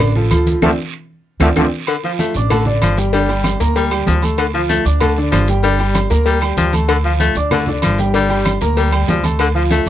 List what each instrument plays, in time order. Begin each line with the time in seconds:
Already playing: upright bass A1, upright piano D4 D5
0.00 cowbell, high conga, low conga, low agogo, long guiro, claves, maracas
0.16 upright piano F3 F4 A4, high conga, low conga, maracas
0.31 upright bass D2, upright piano F3 F4 A4, cowbell, high conga, low agogo, short guiro, claves, maracas
0.47 cowbell, high conga, short guiro, maracas
0.62 upright bass D2, trombone section D3 F3 A3, upright piano C4 D4 F4, cowbell, high conga, high timbale, long guiro, claves, maracas
1.40 upright bass D2, trombone section D3 F3 A3, upright piano C4 D4 F4, cowbell, high conga, high timbale, long guiro, claves, maracas
1.56 upright bass D2, trombone section D3 F3 A3, upright piano C4 D4 F4, cowbell, high conga, high timbale, long guiro, claves, maracas
1.87 baritone saxophone D3, cowbell, high conga, low agogo, long guiro, claves, maracas
2.03 baritone saxophone F3, upright piano F3 F4 F5, high conga, maracas
2.19 baritone saxophone A3, cowbell, high conga, low agogo, short guiro, maracas
2.34 upright bass A1, upright piano D4 D5 D6, high conga, short guiro, maracas
2.50 baritone saxophone D3, upright piano A3 A4 A5, cowbell, high conga, low conga, low agogo, long guiro, claves, maracas
2.66 upright piano D3 D4 D5, high conga, low conga, maracas
2.82 upright bass G1, baritone saxophone F3, cowbell, high conga, low agogo, short guiro, claves, maracas
2.97 upright piano G3 G4 G5, cowbell, short guiro, maracas
3.13 upright piano D3 D4 D5, baritone saxophone G3, cowbell, high conga, low agogo, long guiro, maracas
3.29 upright piano G3 G4 G5, high conga, low agogo, maracas
3.44 cowbell, high conga, low agogo, short guiro, claves, maracas
3.60 upright bass D2, upright piano A#3 A#4 A#5, cowbell, high conga, short guiro, maracas
3.75 baritone saxophone G3, cowbell, high conga, low agogo, long guiro, maracas
3.91 upright piano G3 G4 G5, high conga, low agogo, claves, maracas
4.07 upright bass D2, baritone saxophone F3, cowbell, high conga, low timbale, short guiro, maracas
4.22 upright piano A3 A4 A5, high conga, low agogo, short guiro, maracas
4.37 baritone saxophone D3, cowbell, high conga, low agogo, long guiro, claves, maracas
4.53 upright piano F3 F4 F5, baritone saxophone F3, high conga, maracas
4.69 baritone saxophone A3, cowbell, high conga, low agogo, short guiro, maracas
4.85 upright bass D2, upright piano D4 D5 D6, high conga, short guiro, maracas
5.01 baritone saxophone D3, upright piano A3 A4 A5, cowbell, high conga, low conga, low agogo, long guiro, claves, maracas
5.17 upright piano D3 D4 D5, high conga, maracas
5.32 upright bass G1, baritone saxophone F3, cowbell, high conga, low timbale, low agogo, short guiro, claves, maracas
5.48 upright piano G3 G4 G5, cowbell, short guiro, maracas
5.63 upright piano D3 D4 D5, baritone saxophone G3, cowbell, high conga, low agogo, long guiro, maracas
5.79 upright piano G3 G4 G5, high conga, low agogo, maracas
5.94 cowbell, high conga, low agogo, short guiro, claves, maracas
6.10 upright bass D2, upright piano A#3 A#4 A#5, cowbell, high conga, short guiro, maracas
6.26 baritone saxophone G3, cowbell, high conga, low agogo, long guiro, maracas
6.41 upright piano G3 G4 G5, high conga, low agogo, claves, maracas
6.57 upright bass D2, baritone saxophone F3, cowbell, high conga, short guiro, maracas
6.73 upright piano A3 A4 A5, high conga, low agogo, short guiro, maracas
6.88 baritone saxophone D3, cowbell, high conga, low agogo, long guiro, claves, maracas
7.04 baritone saxophone F3, upright piano F3 F4 F5, high conga, maracas
7.20 baritone saxophone A3, cowbell, high conga, low agogo, short guiro, maracas
7.35 upright bass D2, upright piano D4 D5 D6, high conga, short guiro, maracas
7.51 baritone saxophone D3, upright piano A3 A4 A5, cowbell, high conga, low conga, low agogo, long guiro, claves, maracas
7.67 upright piano D3 D4 D5, high conga, low conga, maracas
7.82 upright bass G1, baritone saxophone F3, cowbell, high conga, low agogo, short guiro, claves, maracas
7.98 upright piano G3 G4 G5, cowbell, short guiro, maracas
8.14 upright piano D3 D4 D5, baritone saxophone G3, cowbell, high conga, low agogo, long guiro, maracas
8.29 upright piano G3 G4 G5, high conga, low agogo, maracas
8.45 cowbell, high conga, low agogo, short guiro, claves, maracas
8.61 upright bass D2, upright piano A#3 A#4 A#5, cowbell, high conga, short guiro, maracas
8.77 baritone saxophone G3, cowbell, high conga, low agogo, long guiro, maracas
8.92 upright piano G3 G4 G5, high conga, low agogo, claves, maracas
9.08 upright bass D2, baritone saxophone F3, cowbell, high conga, low timbale, short guiro, maracas
9.23 upright piano A3 A4 A5, high conga, low agogo, short guiro, maracas
9.39 baritone saxophone D3, cowbell, high conga, low agogo, long guiro, claves, maracas
9.55 upright piano F3 F4 F5, baritone saxophone F3, high conga, maracas
9.71 baritone saxophone A3, cowbell, high conga, low agogo, short guiro, maracas
9.86 short guiro